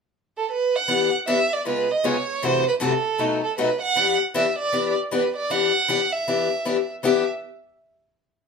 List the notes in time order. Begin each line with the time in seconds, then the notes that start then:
0.37 A4
0.52 B4
0.76 F#5
0.88 E3 B3 D4 G4
1.27 E3 B3 D4 G4 E5
1.53 D5
1.65 C#3 G#3 B3 F4 G#4 B4
1.91 D#5
2.04 C#3 G#3 B3 F4 G#4 C#5
2.42 F#2 C3 E3 A3 E4 F#4 C5
2.68 B4
2.80 F#2 C3 E3 A3 E4 F#4 A4
3.18 B2 F#3 A3 D#4 F#4
3.44 A4
3.58 B2 F#3 A3 D#4 F#4 B4
3.82 F#5
3.96 E3 B3 D4 G4
4.34 E3 B3 D4 G4 E5
4.59 D5
4.73 E3 B3 D4 G4
5.11 E3 B3 D4 G4 B4
5.37 D5
5.50 E3 B3 D4 G4 F#5
5.88 E3 B3 D4 G4
6.12 E5
6.28 E3 B3 D4 G4
6.65 E3 B3 D4 G4
7.03 E3 B3 D4 G4 E5